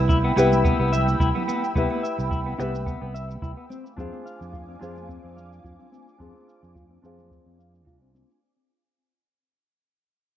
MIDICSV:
0, 0, Header, 1, 6, 480
1, 0, Start_track
1, 0, Tempo, 555556
1, 1518, Time_signature, 4, 2, 24, 8
1, 8952, End_track
2, 0, Start_track
2, 0, Title_t, "Analog synth pad"
2, 0, Program_c, 0, 89
2, 0, Note_on_c, 0, 79, 72
2, 0, Note_on_c, 0, 83, 70
2, 0, Note_on_c, 0, 88, 83
2, 3162, Note_off_c, 0, 88, 0
2, 3164, Note_off_c, 0, 79, 0
2, 3164, Note_off_c, 0, 83, 0
2, 3198, Note_on_c, 0, 77, 73
2, 3199, Note_on_c, 0, 80, 72
2, 3199, Note_on_c, 0, 86, 82
2, 7243, Note_off_c, 0, 77, 0
2, 7244, Note_off_c, 0, 80, 0
2, 7244, Note_off_c, 0, 86, 0
2, 8952, End_track
3, 0, Start_track
3, 0, Title_t, "Nylon-string guitar"
3, 0, Program_c, 1, 24
3, 0, Note_on_c, 1, 64, 82
3, 0, Note_on_c, 1, 67, 79
3, 0, Note_on_c, 1, 71, 84
3, 0, Note_on_c, 1, 76, 92
3, 289, Note_off_c, 1, 64, 0
3, 293, Note_off_c, 1, 67, 0
3, 297, Note_off_c, 1, 71, 0
3, 302, Note_off_c, 1, 76, 0
3, 312, Note_on_c, 1, 64, 78
3, 320, Note_on_c, 1, 67, 81
3, 329, Note_on_c, 1, 71, 80
3, 338, Note_on_c, 1, 76, 99
3, 1488, Note_off_c, 1, 64, 0
3, 1492, Note_off_c, 1, 67, 0
3, 1497, Note_off_c, 1, 71, 0
3, 1501, Note_off_c, 1, 76, 0
3, 1513, Note_on_c, 1, 64, 75
3, 1521, Note_on_c, 1, 67, 76
3, 1530, Note_on_c, 1, 71, 81
3, 1539, Note_on_c, 1, 76, 94
3, 2209, Note_off_c, 1, 64, 0
3, 2213, Note_off_c, 1, 67, 0
3, 2217, Note_off_c, 1, 71, 0
3, 2222, Note_off_c, 1, 76, 0
3, 2232, Note_on_c, 1, 64, 82
3, 2242, Note_on_c, 1, 67, 79
3, 2250, Note_on_c, 1, 71, 81
3, 2255, Note_off_c, 1, 64, 0
3, 2258, Note_on_c, 1, 76, 97
3, 3186, Note_off_c, 1, 67, 0
3, 3191, Note_off_c, 1, 71, 0
3, 3195, Note_off_c, 1, 76, 0
3, 3425, Note_on_c, 1, 62, 87
3, 3433, Note_on_c, 1, 65, 77
3, 3443, Note_on_c, 1, 68, 81
3, 3451, Note_on_c, 1, 72, 83
3, 3459, Note_on_c, 1, 77, 99
3, 4125, Note_off_c, 1, 62, 0
3, 4129, Note_off_c, 1, 65, 0
3, 4134, Note_off_c, 1, 68, 0
3, 4138, Note_off_c, 1, 72, 0
3, 4141, Note_on_c, 1, 62, 90
3, 4142, Note_off_c, 1, 77, 0
3, 4149, Note_on_c, 1, 65, 84
3, 4159, Note_on_c, 1, 68, 82
3, 4168, Note_on_c, 1, 72, 81
3, 4177, Note_on_c, 1, 77, 91
3, 5323, Note_off_c, 1, 62, 0
3, 5327, Note_off_c, 1, 65, 0
3, 5332, Note_off_c, 1, 68, 0
3, 5336, Note_off_c, 1, 72, 0
3, 5341, Note_off_c, 1, 77, 0
3, 5342, Note_on_c, 1, 62, 83
3, 5351, Note_on_c, 1, 65, 79
3, 5359, Note_on_c, 1, 68, 80
3, 5368, Note_on_c, 1, 72, 78
3, 5378, Note_on_c, 1, 77, 89
3, 6043, Note_off_c, 1, 62, 0
3, 6048, Note_off_c, 1, 65, 0
3, 6052, Note_off_c, 1, 68, 0
3, 6056, Note_off_c, 1, 72, 0
3, 6061, Note_off_c, 1, 77, 0
3, 6065, Note_on_c, 1, 62, 81
3, 6073, Note_on_c, 1, 65, 77
3, 6081, Note_on_c, 1, 68, 77
3, 6089, Note_on_c, 1, 72, 77
3, 6100, Note_on_c, 1, 77, 94
3, 7245, Note_off_c, 1, 62, 0
3, 7249, Note_off_c, 1, 65, 0
3, 7253, Note_off_c, 1, 68, 0
3, 7257, Note_off_c, 1, 72, 0
3, 7262, Note_off_c, 1, 77, 0
3, 8952, End_track
4, 0, Start_track
4, 0, Title_t, "Clean electric guitar"
4, 0, Program_c, 2, 27
4, 79, Note_on_c, 2, 64, 88
4, 148, Note_off_c, 2, 64, 0
4, 210, Note_on_c, 2, 59, 69
4, 268, Note_off_c, 2, 59, 0
4, 320, Note_on_c, 2, 59, 88
4, 435, Note_off_c, 2, 59, 0
4, 559, Note_on_c, 2, 59, 73
4, 675, Note_off_c, 2, 59, 0
4, 687, Note_on_c, 2, 59, 65
4, 786, Note_off_c, 2, 59, 0
4, 799, Note_on_c, 2, 76, 74
4, 915, Note_off_c, 2, 76, 0
4, 1039, Note_on_c, 2, 64, 96
4, 1108, Note_off_c, 2, 64, 0
4, 1168, Note_on_c, 2, 59, 61
4, 1227, Note_off_c, 2, 59, 0
4, 1278, Note_on_c, 2, 59, 85
4, 1394, Note_off_c, 2, 59, 0
4, 1517, Note_on_c, 2, 59, 72
4, 1634, Note_off_c, 2, 59, 0
4, 1647, Note_on_c, 2, 59, 74
4, 1746, Note_off_c, 2, 59, 0
4, 1757, Note_on_c, 2, 76, 68
4, 1874, Note_off_c, 2, 76, 0
4, 1996, Note_on_c, 2, 64, 84
4, 2067, Note_off_c, 2, 64, 0
4, 2126, Note_on_c, 2, 59, 66
4, 2186, Note_off_c, 2, 59, 0
4, 2234, Note_on_c, 2, 59, 88
4, 2352, Note_off_c, 2, 59, 0
4, 2474, Note_on_c, 2, 59, 74
4, 2592, Note_off_c, 2, 59, 0
4, 2606, Note_on_c, 2, 59, 71
4, 2706, Note_off_c, 2, 59, 0
4, 2717, Note_on_c, 2, 76, 72
4, 2834, Note_off_c, 2, 76, 0
4, 2957, Note_on_c, 2, 64, 91
4, 3027, Note_off_c, 2, 64, 0
4, 3087, Note_on_c, 2, 59, 65
4, 3147, Note_off_c, 2, 59, 0
4, 3199, Note_on_c, 2, 60, 85
4, 3315, Note_off_c, 2, 60, 0
4, 3438, Note_on_c, 2, 60, 73
4, 3554, Note_off_c, 2, 60, 0
4, 3566, Note_on_c, 2, 60, 67
4, 3666, Note_off_c, 2, 60, 0
4, 3677, Note_on_c, 2, 77, 72
4, 3794, Note_off_c, 2, 77, 0
4, 3916, Note_on_c, 2, 65, 91
4, 3987, Note_off_c, 2, 65, 0
4, 4045, Note_on_c, 2, 60, 65
4, 4106, Note_off_c, 2, 60, 0
4, 4155, Note_on_c, 2, 60, 96
4, 4273, Note_off_c, 2, 60, 0
4, 4395, Note_on_c, 2, 60, 71
4, 4513, Note_off_c, 2, 60, 0
4, 4523, Note_on_c, 2, 60, 64
4, 4624, Note_off_c, 2, 60, 0
4, 4636, Note_on_c, 2, 77, 72
4, 4753, Note_off_c, 2, 77, 0
4, 4874, Note_on_c, 2, 65, 90
4, 4946, Note_off_c, 2, 65, 0
4, 5004, Note_on_c, 2, 60, 62
4, 5065, Note_off_c, 2, 60, 0
4, 5115, Note_on_c, 2, 60, 85
4, 5233, Note_off_c, 2, 60, 0
4, 5356, Note_on_c, 2, 60, 76
4, 5473, Note_off_c, 2, 60, 0
4, 5486, Note_on_c, 2, 60, 69
4, 5586, Note_off_c, 2, 60, 0
4, 5597, Note_on_c, 2, 77, 67
4, 5714, Note_off_c, 2, 77, 0
4, 5835, Note_on_c, 2, 65, 81
4, 5906, Note_off_c, 2, 65, 0
4, 5965, Note_on_c, 2, 60, 66
4, 6026, Note_off_c, 2, 60, 0
4, 6074, Note_on_c, 2, 60, 86
4, 6192, Note_off_c, 2, 60, 0
4, 6317, Note_on_c, 2, 60, 73
4, 6434, Note_off_c, 2, 60, 0
4, 6446, Note_on_c, 2, 60, 65
4, 6546, Note_off_c, 2, 60, 0
4, 6557, Note_on_c, 2, 77, 70
4, 6674, Note_off_c, 2, 77, 0
4, 6799, Note_on_c, 2, 65, 93
4, 6868, Note_off_c, 2, 65, 0
4, 6927, Note_on_c, 2, 60, 59
4, 6987, Note_off_c, 2, 60, 0
4, 7037, Note_on_c, 2, 60, 77
4, 7154, Note_off_c, 2, 60, 0
4, 8952, End_track
5, 0, Start_track
5, 0, Title_t, "Fingered electric bass"
5, 0, Program_c, 3, 33
5, 0, Note_on_c, 3, 36, 77
5, 265, Note_off_c, 3, 36, 0
5, 317, Note_on_c, 3, 36, 83
5, 625, Note_off_c, 3, 36, 0
5, 687, Note_on_c, 3, 36, 80
5, 985, Note_off_c, 3, 36, 0
5, 1037, Note_on_c, 3, 36, 93
5, 1128, Note_off_c, 3, 36, 0
5, 1517, Note_on_c, 3, 36, 85
5, 1608, Note_off_c, 3, 36, 0
5, 1889, Note_on_c, 3, 36, 77
5, 2186, Note_off_c, 3, 36, 0
5, 2239, Note_on_c, 3, 36, 83
5, 2546, Note_off_c, 3, 36, 0
5, 2608, Note_on_c, 3, 36, 79
5, 2905, Note_off_c, 3, 36, 0
5, 2957, Note_on_c, 3, 36, 89
5, 3048, Note_off_c, 3, 36, 0
5, 3437, Note_on_c, 3, 41, 86
5, 3528, Note_off_c, 3, 41, 0
5, 3810, Note_on_c, 3, 41, 80
5, 4106, Note_off_c, 3, 41, 0
5, 4161, Note_on_c, 3, 41, 86
5, 4467, Note_off_c, 3, 41, 0
5, 4529, Note_on_c, 3, 41, 77
5, 4826, Note_off_c, 3, 41, 0
5, 4878, Note_on_c, 3, 41, 89
5, 4969, Note_off_c, 3, 41, 0
5, 5358, Note_on_c, 3, 41, 84
5, 5449, Note_off_c, 3, 41, 0
5, 5728, Note_on_c, 3, 41, 72
5, 6025, Note_off_c, 3, 41, 0
5, 6079, Note_on_c, 3, 41, 82
5, 6386, Note_off_c, 3, 41, 0
5, 6448, Note_on_c, 3, 41, 79
5, 6799, Note_off_c, 3, 41, 0
5, 6799, Note_on_c, 3, 36, 68
5, 7106, Note_off_c, 3, 36, 0
5, 8952, End_track
6, 0, Start_track
6, 0, Title_t, "Drums"
6, 77, Note_on_c, 9, 36, 100
6, 79, Note_on_c, 9, 63, 51
6, 88, Note_on_c, 9, 82, 30
6, 163, Note_off_c, 9, 36, 0
6, 165, Note_off_c, 9, 63, 0
6, 174, Note_off_c, 9, 82, 0
6, 328, Note_on_c, 9, 82, 72
6, 414, Note_off_c, 9, 82, 0
6, 450, Note_on_c, 9, 63, 89
6, 455, Note_on_c, 9, 82, 42
6, 537, Note_off_c, 9, 63, 0
6, 542, Note_off_c, 9, 82, 0
6, 557, Note_on_c, 9, 36, 95
6, 566, Note_on_c, 9, 82, 30
6, 643, Note_off_c, 9, 36, 0
6, 653, Note_off_c, 9, 82, 0
6, 799, Note_on_c, 9, 64, 65
6, 806, Note_on_c, 9, 82, 69
6, 885, Note_off_c, 9, 64, 0
6, 892, Note_off_c, 9, 82, 0
6, 930, Note_on_c, 9, 63, 61
6, 936, Note_on_c, 9, 82, 39
6, 1017, Note_off_c, 9, 63, 0
6, 1023, Note_off_c, 9, 82, 0
6, 1037, Note_on_c, 9, 36, 93
6, 1048, Note_on_c, 9, 82, 30
6, 1123, Note_off_c, 9, 36, 0
6, 1135, Note_off_c, 9, 82, 0
6, 1173, Note_on_c, 9, 64, 83
6, 1259, Note_off_c, 9, 64, 0
6, 1283, Note_on_c, 9, 63, 80
6, 1287, Note_on_c, 9, 82, 66
6, 1370, Note_off_c, 9, 63, 0
6, 1373, Note_off_c, 9, 82, 0
6, 1418, Note_on_c, 9, 82, 36
6, 1505, Note_off_c, 9, 82, 0
6, 1516, Note_on_c, 9, 36, 92
6, 1528, Note_on_c, 9, 82, 29
6, 1603, Note_off_c, 9, 36, 0
6, 1614, Note_off_c, 9, 82, 0
6, 1644, Note_on_c, 9, 63, 81
6, 1730, Note_off_c, 9, 63, 0
6, 1770, Note_on_c, 9, 82, 64
6, 1856, Note_off_c, 9, 82, 0
6, 1898, Note_on_c, 9, 82, 37
6, 1984, Note_off_c, 9, 82, 0
6, 1996, Note_on_c, 9, 36, 91
6, 2005, Note_on_c, 9, 63, 52
6, 2010, Note_on_c, 9, 82, 30
6, 2082, Note_off_c, 9, 36, 0
6, 2091, Note_off_c, 9, 63, 0
6, 2096, Note_off_c, 9, 82, 0
6, 2249, Note_on_c, 9, 82, 67
6, 2335, Note_off_c, 9, 82, 0
6, 2370, Note_on_c, 9, 63, 78
6, 2378, Note_on_c, 9, 82, 40
6, 2456, Note_off_c, 9, 63, 0
6, 2464, Note_off_c, 9, 82, 0
6, 2476, Note_on_c, 9, 36, 83
6, 2487, Note_on_c, 9, 82, 30
6, 2562, Note_off_c, 9, 36, 0
6, 2573, Note_off_c, 9, 82, 0
6, 2727, Note_on_c, 9, 82, 68
6, 2814, Note_off_c, 9, 82, 0
6, 2844, Note_on_c, 9, 63, 60
6, 2859, Note_on_c, 9, 82, 36
6, 2931, Note_off_c, 9, 63, 0
6, 2945, Note_off_c, 9, 82, 0
6, 2956, Note_on_c, 9, 36, 93
6, 2969, Note_on_c, 9, 82, 29
6, 3043, Note_off_c, 9, 36, 0
6, 3056, Note_off_c, 9, 82, 0
6, 3197, Note_on_c, 9, 63, 66
6, 3210, Note_on_c, 9, 82, 62
6, 3283, Note_off_c, 9, 63, 0
6, 3297, Note_off_c, 9, 82, 0
6, 3339, Note_on_c, 9, 82, 36
6, 3425, Note_off_c, 9, 82, 0
6, 3437, Note_on_c, 9, 36, 87
6, 3450, Note_on_c, 9, 82, 26
6, 3523, Note_off_c, 9, 36, 0
6, 3537, Note_off_c, 9, 82, 0
6, 3575, Note_on_c, 9, 63, 75
6, 3661, Note_off_c, 9, 63, 0
6, 3688, Note_on_c, 9, 82, 66
6, 3775, Note_off_c, 9, 82, 0
6, 3819, Note_on_c, 9, 82, 35
6, 3905, Note_off_c, 9, 82, 0
6, 3918, Note_on_c, 9, 36, 89
6, 3922, Note_on_c, 9, 63, 56
6, 3929, Note_on_c, 9, 82, 27
6, 4004, Note_off_c, 9, 36, 0
6, 4008, Note_off_c, 9, 63, 0
6, 4015, Note_off_c, 9, 82, 0
6, 4169, Note_on_c, 9, 82, 71
6, 4256, Note_off_c, 9, 82, 0
6, 4289, Note_on_c, 9, 63, 83
6, 4299, Note_on_c, 9, 82, 40
6, 4375, Note_off_c, 9, 63, 0
6, 4386, Note_off_c, 9, 82, 0
6, 4398, Note_on_c, 9, 36, 90
6, 4411, Note_on_c, 9, 82, 27
6, 4484, Note_off_c, 9, 36, 0
6, 4497, Note_off_c, 9, 82, 0
6, 4639, Note_on_c, 9, 64, 62
6, 4650, Note_on_c, 9, 82, 63
6, 4725, Note_off_c, 9, 64, 0
6, 4736, Note_off_c, 9, 82, 0
6, 4773, Note_on_c, 9, 63, 56
6, 4778, Note_on_c, 9, 82, 36
6, 4859, Note_off_c, 9, 63, 0
6, 4864, Note_off_c, 9, 82, 0
6, 4878, Note_on_c, 9, 36, 82
6, 4888, Note_on_c, 9, 82, 30
6, 4964, Note_off_c, 9, 36, 0
6, 4975, Note_off_c, 9, 82, 0
6, 5015, Note_on_c, 9, 64, 72
6, 5101, Note_off_c, 9, 64, 0
6, 5121, Note_on_c, 9, 63, 82
6, 5129, Note_on_c, 9, 82, 64
6, 5207, Note_off_c, 9, 63, 0
6, 5216, Note_off_c, 9, 82, 0
6, 5258, Note_on_c, 9, 82, 35
6, 5345, Note_off_c, 9, 82, 0
6, 5358, Note_on_c, 9, 36, 82
6, 5370, Note_on_c, 9, 82, 26
6, 5444, Note_off_c, 9, 36, 0
6, 5456, Note_off_c, 9, 82, 0
6, 5492, Note_on_c, 9, 63, 72
6, 5579, Note_off_c, 9, 63, 0
6, 5609, Note_on_c, 9, 82, 66
6, 5695, Note_off_c, 9, 82, 0
6, 5737, Note_on_c, 9, 82, 34
6, 5823, Note_off_c, 9, 82, 0
6, 5838, Note_on_c, 9, 36, 88
6, 5840, Note_on_c, 9, 63, 57
6, 5847, Note_on_c, 9, 82, 28
6, 5924, Note_off_c, 9, 36, 0
6, 5926, Note_off_c, 9, 63, 0
6, 5933, Note_off_c, 9, 82, 0
6, 6087, Note_on_c, 9, 82, 65
6, 6174, Note_off_c, 9, 82, 0
6, 6208, Note_on_c, 9, 63, 77
6, 6209, Note_on_c, 9, 64, 71
6, 6218, Note_on_c, 9, 82, 39
6, 6295, Note_off_c, 9, 63, 0
6, 6295, Note_off_c, 9, 64, 0
6, 6305, Note_off_c, 9, 82, 0
6, 6318, Note_on_c, 9, 36, 89
6, 6329, Note_on_c, 9, 82, 27
6, 6404, Note_off_c, 9, 36, 0
6, 6415, Note_off_c, 9, 82, 0
6, 6569, Note_on_c, 9, 82, 64
6, 6655, Note_off_c, 9, 82, 0
6, 6687, Note_on_c, 9, 63, 62
6, 6698, Note_on_c, 9, 82, 36
6, 6773, Note_off_c, 9, 63, 0
6, 6784, Note_off_c, 9, 82, 0
6, 6798, Note_on_c, 9, 36, 87
6, 6808, Note_on_c, 9, 82, 30
6, 6884, Note_off_c, 9, 36, 0
6, 6895, Note_off_c, 9, 82, 0
6, 7039, Note_on_c, 9, 63, 69
6, 7049, Note_on_c, 9, 82, 61
6, 7126, Note_off_c, 9, 63, 0
6, 7135, Note_off_c, 9, 82, 0
6, 7178, Note_on_c, 9, 82, 34
6, 7264, Note_off_c, 9, 82, 0
6, 8952, End_track
0, 0, End_of_file